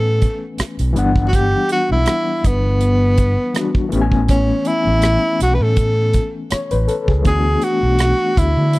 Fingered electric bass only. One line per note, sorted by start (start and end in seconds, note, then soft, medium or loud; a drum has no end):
0.00 0.24 A2 medium
0.59 muted fingered electric bass stroke soft
0.80 0.92 B1 medium
0.96 1.52 G1 medium
1.91 2.04 B1 medium
2.45 3.35 G1 medium
3.93 4.49 A1 medium
4.87 5.15 A1 medium
5.41 5.56 B1 medium
5.60 6.17 A2 medium
6.52 muted fingered electric bass stroke soft
6.73 6.85 A1 medium
7.08 7.21 C#2 medium
7.26 7.54 D2 medium
7.83 8.11 B1 medium
8.38 8.52 D2 medium
8.57 8.79 D3 medium